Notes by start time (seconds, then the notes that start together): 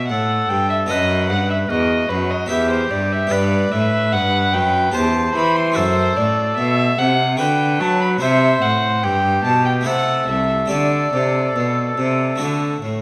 Already playing: B2 G4 B4
0.08 A2 A4 F#5
0.49 G2 G5
0.70 E5
0.86 F#2 B3 A4 B4 D#5
0.91 F#2 B4
1.29 G2 F#5
1.50 E5
1.69 E2 F#4 D#5
2.09 F#2 B4
2.30 D#5
2.46 B3 G4 B4 E5
2.50 E2
2.71 C5
2.91 G2 D5
3.12 E5
3.27 B3 G4 B4
3.31 G2 B4 D5
3.72 A2 E5
4.12 G2 F#5
4.53 F#2 G5
4.92 E2 G4 C5 A5
5.35 E3 B5
5.56 C6
5.72 A3 F#4 A4
5.76 F#2 A4 C5
6.17 A2 D5
6.57 B2 E5
6.98 C3 F#5
7.37 D3 F#4 B4 G5
7.80 F#3 A5
8.01 B5
8.19 C3 E4 C5 E5
8.62 A2 F#5
9.03 G2 G4 G5
9.44 B2 A5
9.66 G5
9.81 A3 E4 A4
9.85 C3 A4 F#5
10.28 C2 E5
10.66 A3 G4 A4
10.70 D3 A4 D5
11.13 C3
11.55 B2
11.97 C3
12.36 D3 A3 F#4 A4
12.40 D3
12.82 A2